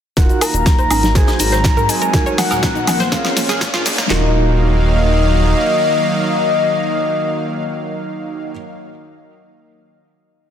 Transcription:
0.17 0.28 D#1 loud
0.17 1.14 D#3 medium
0.17 3.09 F#3 medium
0.17 1.14 A#3 medium
0.17 1.11 D#4 medium
0.17 1.11 F4 medium
0.17 1.11 F#4 medium
0.17 0.25 A#4 medium
0.17 1.11 A#4 medium
0.17 1.14 F5 medium
0.17 0.43 F#5 loud
0.17 kick loud
0.17 snare soft
0.17 closed hi-hat soft
0.17 closed hi-hat medium
0.17 riser medium
0.17 shaker soft
0.29 0.37 D#4 medium
0.29 closed hi-hat soft
0.29 shaker soft
0.41 0.50 A#4 medium
0.41 1.17 A#5 loud
0.41 closed hi-hat medium
0.41 open hi-hat loud
0.41 high woodblock medium
0.41 shaker medium
0.54 0.88 D#1 medium
0.54 0.62 D#4 medium
0.54 closed hi-hat medium
0.54 shaker soft
0.66 0.74 D#4 medium
0.66 kick loud
0.66 snare loud
0.66 snare soft
0.66 closed hi-hat medium
0.66 high conga medium
0.66 shaker soft
0.78 0.86 C5 medium
0.78 closed hi-hat soft
0.78 shaker soft
0.91 1.25 G#1 loud
0.91 0.99 D#4 medium
0.91 closed hi-hat medium
0.91 open hi-hat medium
0.91 high conga medium
0.91 high woodblock medium
0.91 shaker medium
1.03 1.11 D#4 medium
1.03 snare soft
1.03 closed hi-hat medium
1.03 low conga medium
1.03 shaker soft
1.15 2.13 G#3 medium
1.15 2.13 C4 medium
1.15 2.09 D#4 medium
1.15 2.09 F#4 medium
1.15 2.09 G#4 medium
1.15 1.23 A#4 medium
1.15 2.09 C5 medium
1.15 1.39 G#5 loud
1.15 kick loud
1.15 snare medium
1.15 closed hi-hat medium
1.15 shaker soft
1.27 1.35 D#4 medium
1.27 snare medium
1.27 closed hi-hat soft
1.27 high woodblock medium
1.27 shaker soft
1.39 1.74 G#1 medium
1.39 1.48 D#4 medium
1.39 1.91 A#5 loud
1.39 closed hi-hat medium
1.39 open hi-hat loud
1.39 shaker medium
1.52 1.60 C5 medium
1.52 snare soft
1.52 closed hi-hat medium
1.52 shaker soft
1.64 1.72 D#4 medium
1.64 kick loud
1.64 snare loud
1.64 snare medium
1.64 closed hi-hat medium
1.64 shaker soft
1.77 1.87 G#2 loud
1.77 1.85 A#4 medium
1.77 closed hi-hat soft
1.77 shaker soft
1.89 1.97 D#4 medium
1.89 2.38 G#5 loud
1.89 closed hi-hat medium
1.89 open hi-hat loud
1.89 shaker medium
2.02 2.09 A#4 medium
2.02 closed hi-hat medium
2.02 shaker soft
2.13 2.24 D#1 loud
2.13 3.11 D#3 medium
2.13 4.08 A#3 medium
2.13 3.07 D#4 medium
2.13 2.22 D#4 medium
2.13 3.07 F#4 medium
2.13 3.07 A#4 medium
2.13 3.11 F#5 medium
2.13 kick loud
2.13 snare medium
2.13 closed hi-hat medium
2.13 closed hi-hat soft
2.13 shaker soft
2.26 2.34 C#5 medium
2.26 closed hi-hat soft
2.26 shaker soft
2.38 2.46 D#4 medium
2.38 3.08 F#5 loud
2.38 snare medium
2.38 closed hi-hat medium
2.38 open hi-hat loud
2.38 high woodblock medium
2.38 shaker medium
2.50 2.84 D#1 medium
2.50 2.58 A#4 loud
2.50 snare soft
2.50 closed hi-hat medium
2.50 high woodblock medium
2.50 shaker soft
2.63 2.71 D#4 medium
2.63 kick loud
2.63 snare loud
2.63 snare medium
2.63 closed hi-hat medium
2.63 high conga medium
2.63 shaker soft
2.75 2.83 D#4 medium
2.75 closed hi-hat soft
2.75 shaker soft
2.87 3.21 A#1 loud
2.87 2.95 D#4 medium
2.87 snare medium
2.87 closed hi-hat medium
2.87 open hi-hat loud
2.87 high conga medium
2.87 high woodblock medium
2.87 shaker medium
3.00 3.08 C5 medium
3.00 snare soft
3.00 closed hi-hat medium
3.00 low conga medium
3.00 shaker soft
3.12 4.09 G#3 medium
3.12 3.20 A#3 medium
3.12 4.06 C#4 medium
3.12 4.09 C#4 medium
3.12 4.06 F4 medium
3.12 4.06 G#4 medium
3.12 4.06 A#4 medium
3.12 3.58 F5 medium
3.12 kick loud
3.12 snare medium
3.12 closed hi-hat medium
3.12 shaker soft
3.24 snare medium
3.24 closed hi-hat soft
3.24 high woodblock medium
3.24 shaker soft
3.37 3.71 A#1 medium
3.37 3.45 A#3 medium
3.37 snare medium
3.37 closed hi-hat medium
3.37 open hi-hat loud
3.37 shaker medium
3.49 3.57 G#4 medium
3.49 snare medium
3.49 closed hi-hat medium
3.49 shaker soft
3.61 3.69 A#3 medium
3.61 kick loud
3.61 snare loud
3.61 closed hi-hat medium
3.61 closed hi-hat loud
3.61 shaker soft
3.74 3.84 A#2 loud
3.74 3.81 F4 loud
3.74 snare medium
3.74 closed hi-hat soft
3.74 high woodblock medium
3.74 shaker soft
3.86 3.94 A#3 medium
3.86 snare loud
3.86 closed hi-hat medium
3.86 open hi-hat loud
3.86 shaker medium
3.98 4.06 A#3 medium
3.98 snare loud
3.98 shaker soft
4.10 5.54 D#1 loud
4.10 8.51 D#3 medium
4.10 8.51 F#3 medium
4.10 8.51 A#3 medium
4.10 8.51 D#4 medium
4.10 8.51 F4 medium
4.10 8.51 F#4 medium
4.10 8.51 A#4 loud
4.10 8.51 D#5 loud
4.10 8.51 F5 medium
4.10 snare loud
4.10 clap medium

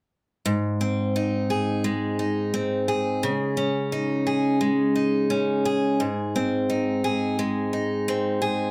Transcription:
0.46 3.23 G#2 medium
0.81 2.52 C4 soft
1.16 2.19 D#4 soft
1.50 2.88 G#4 soft
1.84 4.60 G#3 soft
2.19 3.60 D#4 soft
2.54 3.30 C4 soft
2.88 4.26 G#4 soft
3.23 6.00 C#3 medium
3.57 5.29 C#4 soft
3.92 4.95 D#4 soft
4.27 5.65 G#4 medium
4.61 7.38 G#3 medium
4.96 6.69 D#4 soft
5.30 6.07 C#4 medium
5.65 7.04 G#4 medium
6.00 8.71 G#2 medium
6.36 8.07 C4 medium
6.70 7.73 D#4 soft
7.04 8.41 G#4 medium
7.39 8.71 G#3 soft
7.73 8.71 D#4 soft
8.08 8.71 C4 medium
8.42 8.71 G#4 medium

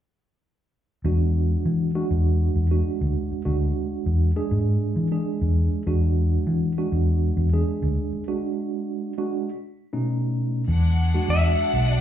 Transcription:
1.04 1.55 E2 medium
1.04 1.89 G#3 medium
1.04 1.90 D4 medium
1.04 1.90 F#4 medium
1.65 2.03 E3 medium
1.95 2.66 G#3 medium
1.95 2.66 D4 medium
1.95 2.66 F#4 medium
2.11 2.48 E2 medium
2.56 2.81 E2 medium
2.71 3.41 G#3 medium
2.71 3.41 D4 medium
2.71 3.41 F#4 medium
3.01 3.14 D2 medium
3.31 muted fingered electric bass stroke soft
3.45 3.71 D2 medium
3.45 4.30 G#3 medium
3.45 4.30 D4 medium
3.45 4.30 F#4 medium
4.06 4.31 E2 medium
4.36 5.07 G#3 medium
4.36 5.07 D4 medium
4.36 5.07 G#4 medium
4.51 4.77 G#2 medium
4.96 5.21 E3 medium
5.12 5.82 G#3 medium
5.12 5.82 D4 medium
5.12 5.82 G#4 medium
5.41 5.67 E2 medium
5.87 6.37 E2 loud
5.87 6.72 G#3 medium
5.87 6.72 D4 medium
5.87 6.72 F#4 medium
6.47 6.85 E3 medium
6.78 7.48 G#3 medium
6.78 7.48 D4 medium
6.78 7.48 F#4 medium
6.92 7.30 E2 medium
7.37 7.62 E2 medium
7.53 8.23 G#3 medium
7.53 8.23 D4 medium
7.53 8.23 G#4 medium
7.82 7.95 D2 medium
8.13 muted fingered electric bass stroke soft
8.28 9.12 G#3 medium
8.28 9.12 D4 medium
8.28 9.12 F#4 medium
9.18 9.48 G#3 medium
9.18 9.48 D4 medium
9.18 9.48 F#4 medium
9.93 10.63 B2 medium
9.93 10.63 A3 medium
9.93 10.63 C#4 medium
9.93 10.63 D#4 medium
10.68 11.18 E2 loud
10.68 12.01 G#3 medium
10.68 12.01 D4 medium
10.68 12.01 F#5 medium
11.14 11.98 G#3 medium
11.14 11.98 D4 medium
11.14 11.98 F#4 medium
11.28 11.54 E2 medium
11.28 11.91 E5 medium
11.73 11.99 B1 medium
11.91 12.01 D5 medium

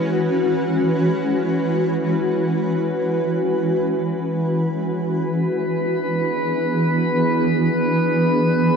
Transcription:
0.00 8.77 E3 medium
0.00 5.01 G#3 medium
0.00 5.00 C#4 medium
0.00 7.76 F#4 medium
0.00 8.77 B4 medium
4.99 8.77 B4 medium
4.99 8.77 B5 medium
5.31 8.77 B3 medium
5.31 8.77 D4 medium
5.66 8.77 G#4 medium

